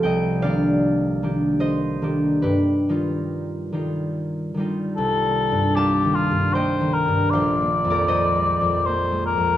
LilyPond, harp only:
<<
  \new Staff \with { instrumentName = "Harp" } { \time 3/4 \key c \dorian \tempo 4 = 76 << { g''8 f''4. ees''4 | b'2. | r4 a''4 g''4 | f''8. d''16 ees''2 | } \\ { <c'' ees'' f''>8 d''4. c''4 | g'2.~ | g'4 f''4 ees''4 | c''8. bes'16 c''2 | } >> }
  \new Staff \with { instrumentName = "Harp" } { \clef bass \time 3/4 \key c \dorian <c, f g c' g'>8 <ees bes d' g'>4 <ees bes d' g'>4 <ees bes d' g'>8 | g,8 <dis g dis' f'>4 <dis g dis' f'>4 <dis g dis' f'>8 | \tuplet 3/2 { c,8 bes8 g,8 bes8 ees8 g,8 bes8 ees8 g,8 } | \tuplet 3/2 { bes,,8 bes8 f,8 bes8 aes8 f,8 bes8 aes8 f,8 } | }
>>